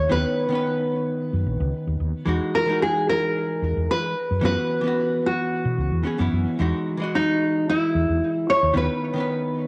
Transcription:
0.09 fretless electric bass D#2, hollow-body jazz guitar D#3 B3 C#4 B4, nylon-string guitar B4
0.49 hollow-body jazz guitar D#3 B3 C#4
0.55 hollow-body jazz guitar B4
1.33 fretless electric bass F#2
1.46 fretless electric bass A#1
1.60 fretless electric bass C#2
1.87 fretless electric bass D#2
2.00 fretless electric bass D#2
2.25 fretless electric bass E2, hollow-body jazz guitar E3 G#3 D#4 F#4
2.55 nylon-string guitar A#4
2.65 hollow-body jazz guitar E3 G#3
2.70 hollow-body jazz guitar D#4 F#4
2.82 nylon-string guitar G#4
3.09 nylon-string guitar A#4
3.62 fretless electric bass E2
3.77 fretless electric bass E2
3.91 nylon-string guitar B4
4.31 fretless electric bass F#2
4.41 fretless electric bass F#2, hollow-body jazz guitar E3 B3 C#4 F#4, nylon-string guitar B4
4.81 hollow-body jazz guitar E3 B3
4.85 hollow-body jazz guitar C#4 F#4
5.26 nylon-string guitar F#4
5.65 fretless electric bass B2
5.78 fretless electric bass C#2
5.92 fretless electric bass E2
6.03 hollow-body jazz guitar E3 B3 C#4 G#4
6.18 fretless electric bass F#2, hollow-body jazz guitar E3 B3 C#4 E4
6.33 fretless electric bass F#2
6.59 fretless electric bass E2, hollow-body jazz guitar E3 G#3 D#4 F#4
6.97 hollow-body jazz guitar E3 G#3
7.02 hollow-body jazz guitar F#4 D#5
7.15 nylon-string guitar D#4
7.70 nylon-string guitar E4
7.95 fretless electric bass E2
8.09 fretless electric bass E2
8.50 nylon-string guitar C#5
8.63 fretless electric bass D#2
8.74 fretless electric bass D#2, hollow-body jazz guitar D#3 B3 C#4 B4, nylon-string guitar B4
9.14 hollow-body jazz guitar D#3 B3
9.18 hollow-body jazz guitar C#4 B4

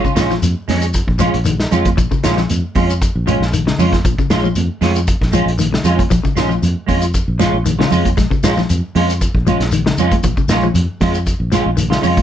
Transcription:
0.04 clean electric guitar C#3 C#4 F4, kick, shekere
0.15 fingered electric bass A#1, clean electric guitar G#3 C#4 F4, snare, closed hi-hat, high conga, shekere
0.30 clean electric guitar F3, snare, shekere
0.42 fingered electric bass F2, closed hi-hat, high conga, low conga, shekere
0.68 fingered electric bass F2, clean electric guitar G#3 C#4, snare, open hi-hat, high conga, low conga, shekere
0.81 closed hi-hat, shekere
0.93 kick, closed hi-hat, shekere
1.07 fingered electric bass A#1, kick
1.19 clean electric guitar F3 G#3 C#4 F4, closed hi-hat, high conga, shekere
1.34 fingered electric bass A#1, closed hi-hat
1.45 clean electric guitar D#3, closed hi-hat, shekere
1.60 snare
1.71 fingered electric bass F2, clean electric guitar G#3 C#4 F4, closed hi-hat, low conga, shekere
1.85 kick, closed hi-hat, high conga, shekere
1.97 fingered electric bass A#1, clean electric guitar F3, kick, closed hi-hat, shekere
2.11 clean electric guitar C#3, kick, shekere
2.23 fingered electric bass A#1, clean electric guitar G#3 C#4 F4, snare, closed hi-hat, high conga, shekere
2.37 clean electric guitar F3, snare, shekere
2.49 fingered electric bass F2, closed hi-hat, high conga, shekere
2.75 fingered electric bass F2, clean electric guitar G#3 C#4 F4, kick, open hi-hat, high conga, low conga, shekere
2.89 closed hi-hat, shekere
3.01 kick, closed hi-hat, shekere
3.15 fingered electric bass A#1
3.26 clean electric guitar F3 G#3 C#4 F4, closed hi-hat, high conga, shekere
3.40 fingered electric bass A#1, snare
3.53 clean electric guitar D#3, closed hi-hat, shekere
3.67 clean electric guitar C#3, snare
3.78 fingered electric bass F2, clean electric guitar G#3 C#4 F4, open hi-hat, low conga, shekere
3.93 kick, snare, closed hi-hat, high conga, shekere
4.05 fingered electric bass A#1, clean electric guitar F3, kick, closed hi-hat, shekere
4.18 clean electric guitar C#3, muted fingered electric bass stroke, kick, shekere
4.30 fingered electric bass A#1, clean electric guitar G#3 C#4 F4, snare, closed hi-hat, high conga, shekere
4.44 clean electric guitar F3, high conga, shekere
4.55 fingered electric bass F2, closed hi-hat, high conga, shekere
4.81 fingered electric bass F2, clean electric guitar G#3 C#4 F4, snare, open hi-hat, high conga, low conga, shekere
4.95 closed hi-hat, shekere
5.07 kick, closed hi-hat, shekere
5.21 fingered electric bass A#1, kick, snare
5.32 clean electric guitar F3 G#3 C#4 F4, closed hi-hat, high conga, shekere
5.46 fingered electric bass A#1, closed hi-hat
5.58 clean electric guitar D#3, closed hi-hat, high conga, shekere
5.73 clean electric guitar C#3, snare
5.84 fingered electric bass F2, clean electric guitar G#3 C#4 F4, closed hi-hat, low conga, shekere
5.99 kick, closed hi-hat, high conga, shekere
6.10 fingered electric bass A#1, clean electric guitar F3, kick, closed hi-hat, low conga, shekere
6.24 clean electric guitar C#3, kick, shekere
6.36 fingered electric bass A#1, clean electric guitar G#3 C#4 F4, snare, closed hi-hat, high conga, shekere
6.49 clean electric guitar F3, high conga, shekere
6.62 fingered electric bass F2, closed hi-hat, high conga, low conga, shekere
6.87 fingered electric bass F2, clean electric guitar G#3 C#4 F4, kick, open hi-hat, high conga, low conga, shekere
7.01 closed hi-hat, shekere
7.14 kick, closed hi-hat, shekere
7.28 fingered electric bass A#1
7.39 clean electric guitar F3 G#3 C#4 F4, snare, closed hi-hat, high conga, shekere
7.53 fingered electric bass A#1
7.66 clean electric guitar D#3, closed hi-hat, high conga, shekere
7.79 clean electric guitar C#3 C#4 F4, snare
7.91 fingered electric bass F2, clean electric guitar G#3 C#4 F4, open hi-hat, low conga, shekere
8.04 kick, closed hi-hat, high conga, shekere
8.17 fingered electric bass A#1, clean electric guitar G#3, kick, snare, closed hi-hat, low conga, shekere
8.30 clean electric guitar C#3, kick, shekere
8.43 fingered electric bass A#1, clean electric guitar G#3 C#4 F4, snare, closed hi-hat, high conga, shekere
8.57 clean electric guitar F3, snare, high conga, shekere
8.69 fingered electric bass F2, closed hi-hat, low conga, shekere
8.95 fingered electric bass F2, clean electric guitar G#3 C#4 F4, open hi-hat, high conga, low conga, shekere
9.09 closed hi-hat, shekere
9.21 kick, closed hi-hat, shekere
9.34 fingered electric bass A#1, kick
9.47 clean electric guitar F3 G#3 C#4 F4, closed hi-hat, high conga, shekere
9.60 fingered electric bass A#1, snare, closed hi-hat
9.71 clean electric guitar D#3, closed hi-hat, shekere
9.86 clean electric guitar C#3, snare
9.97 fingered electric bass F2, clean electric guitar G#3 C#4 F4, closed hi-hat, low conga, shekere
10.11 kick, closed hi-hat, high conga, shekere
10.23 fingered electric bass A#1, clean electric guitar F3, kick, closed hi-hat, low conga, shekere
10.37 clean electric guitar C#3, kick, shekere
10.48 fingered electric bass A#1, clean electric guitar G#3 C#4 F4, snare, closed hi-hat, high conga, shekere
10.62 clean electric guitar F3, high conga, shekere
10.74 fingered electric bass F2, closed hi-hat, low conga, shekere
11.01 fingered electric bass F2, clean electric guitar G#3 C#4 F4, kick, snare, open hi-hat, high conga, low conga, shekere
11.14 closed hi-hat, shekere
11.27 kick, closed hi-hat, shekere
11.40 fingered electric bass A#1
11.52 clean electric guitar F3 G#3 C#4 F4, snare, closed hi-hat, high conga, shekere
11.66 fingered electric bass A#1
11.77 clean electric guitar D#3, closed hi-hat, high conga, shekere
11.90 clean electric guitar C#3 C#4 F4, snare
12.01 fingered electric bass F2, clean electric guitar G#3 C#4 F4, open hi-hat, low conga, shekere
12.17 kick, closed hi-hat, high conga, shekere

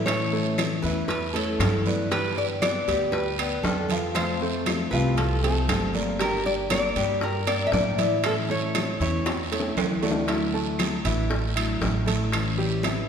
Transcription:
Already playing: upright bass A2
0.06 grand piano E3 E4 E5, steel-string acoustic guitar E3 A3 C#4 E4, nylon-string guitar C#5, high bongo, high conga, high timbale, long guiro, claves
0.33 grand piano A3 A4 C#5, high bongo, high conga
0.58 steel-string acoustic guitar E3 A3 C#4 E4, high bongo, high conga, high timbale, short guiro, claves
0.82 upright bass E2, grand piano E3 E4 E5, steel-string acoustic guitar A3 C#4 E4, nylon-string guitar B4, high bongo, high conga, short guiro
1.08 nylon-string guitar B4, muted steel-string acoustic guitar stroke, high bongo, high conga, high timbale, long guiro
1.34 grand piano A3 A4 C#5, steel-string acoustic guitar A3 C#4 E4, nylon-string guitar A4, high conga, high timbale
1.59 upright bass G2, steel-string acoustic guitar E3 A3 C#4 E4, high bongo, low bongo, high conga, high timbale, short guiro, claves
1.86 grand piano B3 B4 D5, high bongo, high conga, short guiro
2.11 steel-string acoustic guitar D3 G3 B3 G4, grand piano G3 G4 G5, nylon-string guitar B4, high bongo, high timbale, long guiro
2.36 nylon-string guitar D5, high conga
2.62 steel-string acoustic guitar D3 G3 B3 G4, grand piano B3 B4 D5, nylon-string guitar D5, high bongo, high conga, high timbale, short guiro, claves
2.88 upright bass D2, grand piano G3 G4 G5, steel-string acoustic guitar G3 B3 G4, high conga, high timbale, short guiro
3.12 nylon-string guitar B4, muted steel-string acoustic guitar stroke, high bongo, high conga, long guiro
3.39 steel-string acoustic guitar G3 B3 G4, grand piano B3 B4 D5, high conga, high timbale, claves
3.63 upright bass F2, steel-string acoustic guitar D3 G3 B3 G4, grand piano B3 B4 D5, nylon-string guitar A4, high bongo, low bongo, high conga, short guiro
3.89 grand piano F3 F4 F5, high conga, high timbale, short guiro
4.15 steel-string acoustic guitar C3 F3 A3 C4 F4, grand piano F3 F4 F5, nylon-string guitar C5, high bongo, high conga, high timbale, long guiro, claves
4.41 grand piano A3 A4 C5, high bongo, high conga
4.66 steel-string acoustic guitar F3 A3 C4 F4, high bongo, high conga, high timbale, short guiro, claves
4.91 upright bass C2, grand piano F3 F4 F5, steel-string acoustic guitar F3 A3 C4 F4, nylon-string guitar B4, high bongo, high conga, short guiro
5.17 nylon-string guitar A4, muted steel-string acoustic guitar stroke, high bongo, high conga, high timbale, long guiro
5.43 steel-string acoustic guitar F3 A3 C4 F4, grand piano A3 A4 C5, nylon-string guitar A4, high conga, high timbale
5.68 upright bass G1, steel-string acoustic guitar F3 A3 C4 F4, high bongo, low bongo, high conga, high timbale, short guiro, claves
5.94 grand piano A#3 A#4 D5, high bongo, high conga, short guiro
6.19 steel-string acoustic guitar D3 G3 A#3 D4 G4, grand piano G3 G4 G5, nylon-string guitar A#4, high bongo, high conga, high timbale, long guiro
6.45 nylon-string guitar D5, high conga
6.70 steel-string acoustic guitar G3 A#3 D4 G4, grand piano A#3 A#4 D5, nylon-string guitar D5, high bongo, high conga, high timbale, short guiro, claves
6.96 upright bass G2, grand piano G3 G4 G5, steel-string acoustic guitar G3 A#3 D4 G4, high conga, high timbale, short guiro
7.21 nylon-string guitar A#4, muted steel-string acoustic guitar stroke, high bongo, high conga, long guiro
7.47 steel-string acoustic guitar G3 A#3 D4 G4, grand piano A#3 A#4 D5, nylon-string guitar D5, high conga, high timbale, claves
7.67 nylon-string guitar E5
7.72 upright bass A2, steel-string acoustic guitar G3 G4, grand piano A#3 A#4 D5, nylon-string guitar D5, high bongo, low bongo, high conga, short guiro
7.98 grand piano E3 E4 E5, high conga, high timbale, short guiro
8.24 grand piano E3 E4 E5, steel-string acoustic guitar E3 A3 C#4 E4, nylon-string guitar A4, high bongo, high conga, high timbale, long guiro, claves
8.49 grand piano A3 A4 C#5, nylon-string guitar C#5, high bongo
8.75 steel-string acoustic guitar E3 A3 C#4 E4, high bongo, high conga, high timbale, short guiro, claves
9.00 upright bass E2, grand piano E3 E4 E5, steel-string acoustic guitar A3 C#4 E4, nylon-string guitar C#5, high bongo, high conga, short guiro
9.25 muted steel-string acoustic guitar stroke, high bongo, high conga, high timbale, long guiro
9.51 grand piano A3 A4 C#5, steel-string acoustic guitar A3 C#4 E4, high conga, high timbale
9.60 low bongo
9.76 upright bass D2, steel-string acoustic guitar E3 A3 C#4 E4, high conga, high timbale, short guiro, claves
10.02 grand piano A3 A4 D5, low timbale, short guiro
10.11 low bongo
10.27 steel-string acoustic guitar D3 F#3 A3 D4 E4, grand piano E3 E4 E5, high bongo, high conga, high timbale, long guiro
10.54 grand piano A3 A4 A5, high conga
10.79 steel-string acoustic guitar F#3 A3 D4 E4, high bongo, high conga, high timbale, short guiro, claves
11.04 upright bass A1, grand piano E3 E4 E5, steel-string acoustic guitar F#3 A3 D4 E4, high conga, high timbale, short guiro
11.30 grand piano A3 A4 A5, muted steel-string acoustic guitar stroke, high bongo, high conga, long guiro
11.55 steel-string acoustic guitar F#3 A3 D4 E4, grand piano E4 E5 E6, high conga, high timbale, claves
11.81 upright bass A1, steel-string acoustic guitar F#3 A3 D4 E4, high bongo, low bongo, high conga, short guiro
12.06 grand piano A3 A4 A5, high conga, high timbale, short guiro
12.32 steel-string acoustic guitar E3 G3 C#4 E4, high bongo, high conga, high timbale, long guiro, claves
12.58 grand piano G3 G4 G5, high bongo, high conga
12.83 grand piano E3 E4 E5, steel-string acoustic guitar E3 G3 C#4 E4, high bongo, high conga, high timbale, short guiro, claves

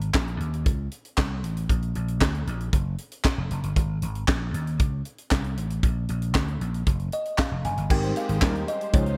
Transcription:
0.01 closed hi-hat
0.14 slap bass A#1, kick, snare, clap
0.28 closed hi-hat
0.40 slap bass D#2, closed hi-hat
0.54 closed hi-hat
0.66 slap bass C#2, kick, closed hi-hat
0.92 closed hi-hat
1.05 closed hi-hat
1.18 slap bass C2, kick, snare, clap
1.44 slap bass A1, closed hi-hat
1.57 closed hi-hat
1.69 slap bass A#1, kick, closed hi-hat
1.82 closed hi-hat
1.95 slap bass A#1, closed hi-hat
2.08 closed hi-hat
2.21 slap bass D2, kick, snare, clap
2.35 closed hi-hat
2.47 slap bass A#1, closed hi-hat
2.60 closed hi-hat
2.73 slap bass F#1, kick, closed hi-hat
2.98 closed hi-hat
3.12 closed hi-hat
3.24 kick, snare, clap
3.38 slap bass F1
3.51 slap bass F#1, closed hi-hat
3.64 slap bass G1, closed hi-hat
3.76 slap bass G#1, kick, closed hi-hat
4.02 slap bass G#1, closed hi-hat
4.15 closed hi-hat
4.28 slap bass A#1, kick, snare, clap
4.54 slap bass D#2, closed hi-hat
4.67 closed hi-hat
4.79 slap bass C#2, kick, closed hi-hat
5.05 closed hi-hat
5.18 closed hi-hat
5.31 slap bass C2, kick, snare, clap
5.44 closed hi-hat
5.57 slap bass A1, closed hi-hat
5.70 closed hi-hat
5.83 slap bass A#1, kick, closed hi-hat
6.09 slap bass A#1, closed hi-hat
6.22 closed hi-hat
6.34 slap bass D2, kick, snare, clap
6.48 closed hi-hat
6.61 slap bass A#1, closed hi-hat
6.74 closed hi-hat
6.86 slap bass F#1, kick, closed hi-hat
7.00 closed hi-hat
7.12 kalimba D#5, closed hi-hat
7.25 closed hi-hat
7.38 kalimba F5, kick, snare, clap
7.51 slap bass F1
7.64 slap bass F#1, kalimba G#5, closed hi-hat
7.78 slap bass G1, closed hi-hat
7.90 slap bass G#1, tine electric piano G#3 C4 D#4 G4 A#4, analog synth pad G#3 G4 C5, kalimba G5, kick, crash
8.03 analog polysynth G3 D#4 C5, closed hi-hat
8.16 kalimba F5, closed hi-hat
8.29 slap bass G#1, analog polysynth D#3 C4 G#4, closed hi-hat
8.42 slap bass D#2, analog polysynth G3 D#4 A#4, kalimba C5, kick, snare, clap
8.55 closed hi-hat
8.68 kalimba D#5, closed hi-hat
8.81 closed hi-hat
8.93 slap bass C#2, analog synth pad C#3 D#4 F4, analog polysynth F3 D#4 G#4, tine electric piano G#3 C#4 D#4 F4 C5, kalimba C#5, kick, closed hi-hat
9.06 closed hi-hat

